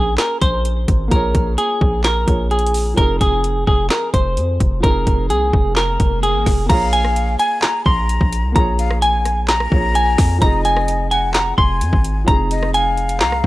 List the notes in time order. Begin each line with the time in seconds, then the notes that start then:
Already playing: A#1 A#3 C#4 F4 G#4
0.18 A#4, snare, clap, closed hi-hat
0.41 A#1 C5, kick, closed hi-hat
0.65 closed hi-hat
0.88 G#1, kick, closed hi-hat
1.08 A#1 A#3 F4 A#4, kick, closed hi-hat
1.13 G#4 C#5
1.35 A#1, kick, closed hi-hat
1.58 G#4, closed hi-hat
1.81 A#1, kick
2.04 A#4, snare, clap, closed hi-hat
2.26 A#1 A#3 F4 G#4 C#5, kick, closed hi-hat
2.51 G#4, closed hi-hat
2.59 closed hi-hat
2.67 closed hi-hat
2.74 open hi-hat
2.94 F1 F3 C4 A#4, kick, closed hi-hat
2.99 D#4 G#4
3.21 F1 G#4, kick, closed hi-hat
3.44 closed hi-hat
3.67 F1 G#4, kick
3.90 A#4, snare, clap, closed hi-hat
4.14 F1 C5, kick, closed hi-hat
4.37 F2, closed hi-hat
4.60 F1, kick, closed hi-hat
4.80 F1 F3 C4 A#4, kick, closed hi-hat, swell
4.85 D#4 G#4
5.07 F1, kick, closed hi-hat
5.30 C2 G#4, closed hi-hat
5.53 F1, kick
5.76 A#4, snare, clap, closed hi-hat
6.00 F1, kick, closed hi-hat
6.23 G#4, closed hi-hat
6.35 G#1
6.46 F1, kick, snare, open hi-hat
6.66 A#1 A#3 F4 F5 A#5, kick, closed hi-hat, crash
6.71 G#4 C#5
6.93 G#5, closed hi-hat
7.05 cross-stick
7.16 closed hi-hat
7.39 G#5, closed hi-hat
7.62 A#5, snare, clap, closed hi-hat
7.86 A#1 A#5 C6, kick
8.09 closed hi-hat
8.21 A#1, kick
8.33 closed hi-hat
8.44 C2
8.52 A#1 A#3 F4 A#5, kick, closed hi-hat
8.57 G#4 C#5
8.79 F5, closed hi-hat
8.91 cross-stick
9.02 G#5, closed hi-hat
9.25 cross-stick, closed hi-hat
9.48 A#5, snare, clap, closed hi-hat
9.60 cross-stick
9.70 A#1 A#3 F4 G#4 C#5, kick
9.95 G#5, closed hi-hat
10.18 F2, kick, snare, open hi-hat
10.38 F1 F3 C4 D#5 A#5, kick, closed hi-hat
10.43 D#4 G#4
10.65 G#5, closed hi-hat
10.77 cross-stick
10.88 closed hi-hat
11.11 F#5 G#5, closed hi-hat
11.34 A#5, snare, clap, closed hi-hat
11.58 F1 G#5 C6, kick
11.81 F2, closed hi-hat
11.93 G#1, kick
12.04 closed hi-hat
12.24 F1 F3 C4 A#5, kick, closed hi-hat
12.29 D#4 G#4
12.51 D#5, closed hi-hat
12.63 cross-stick
12.74 F5 G#5, closed hi-hat
12.97 closed hi-hat
13.09 closed hi-hat
13.20 C2 A#5, snare, clap, closed hi-hat
13.32 cross-stick